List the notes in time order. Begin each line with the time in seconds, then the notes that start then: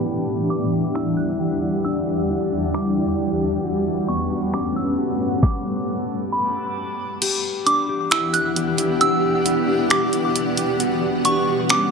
Already playing: E3 G4 D6
0.05 E2 G3 D4 G4 E5 F#5
0.50 D4 D6
0.73 G4
0.95 E4 E6, finger snap
1.17 F#6
1.40 G4
1.62 E4
1.84 D4 G4 D5 E6
2.07 G4
2.29 E4
2.52 D4
2.74 G4 D6, finger snap
2.96 E4
3.41 G4
3.63 G2 A3 B3 C#4 F#4 B4 F#5 A5 C#6
4.08 B3 C#6
4.30 F#4
4.54 C#4 D6, finger snap
4.76 E6
4.98 F#4
5.20 C#4
5.42 G4 A5 D6, kick, snare
6.32 B5
7.22 E3 B3 D4 G4 F#5, closed hi-hat, crash
7.66 D4 D6, closed hi-hat
7.89 G4
8.11 E4 E6, finger snap, closed hi-hat
8.33 F#6, closed hi-hat
8.56 G4, closed hi-hat
8.78 E4, closed hi-hat
9.01 D4 E6, closed hi-hat
9.24 G4
9.46 E4, closed hi-hat
9.68 D4
9.90 G4 D6, finger snap, closed hi-hat
10.13 E4, closed hi-hat
10.36 closed hi-hat
10.57 G4, closed hi-hat
10.80 G3 F#4, closed hi-hat
11.25 B3 C#6, closed hi-hat
11.47 F#4
11.69 C#4 D6, finger snap, closed hi-hat